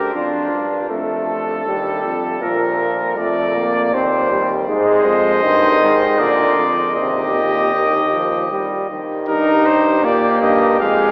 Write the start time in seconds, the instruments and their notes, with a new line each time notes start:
Already playing: bass trombone D2, trumpet G4 A#4
0.14 bass trombone F2, trombone D4, trumpet F4
0.53 bass trombone G2
0.89 bass trombone F2, trombone A3, trumpet A4
1.66 bass trombone D#2, trombone G3
2.04 bass trombone F2
2.41 bass trombone A#2, trombone F3, trumpet A#4
3.17 bass trombone F2, trombone A3, trumpet D5
3.55 trombone A#3
3.92 bass trombone D#2, trombone C4, trumpet C5
4.31 trombone G3
4.68 bass trombone G#2, trombone G#3, trumpet C5 D#5
5.06 bass trombone F2
5.43 bass trombone G2, trombone D#3
5.81 bass trombone G#2
6.19 bass trombone A#2, trombone D3, trumpet A#4 D5
6.58 bass trombone F2
6.96 bass trombone D#2, trombone C3, trumpet G4 D#5
7.35 trombone A#2
7.74 trombone D#3
8.12 trombone F3
8.51 trombone G3
8.89 trombone D#3
9.28 bass trombone G2, trombone D#4, trumpet G4 A#4
9.66 trumpet C5
10.04 bass trombone A#2, trombone A#3, trumpet D5
10.41 bass trombone G2, trumpet D#5
10.80 bass trombone F2, trombone G#3, trumpet F5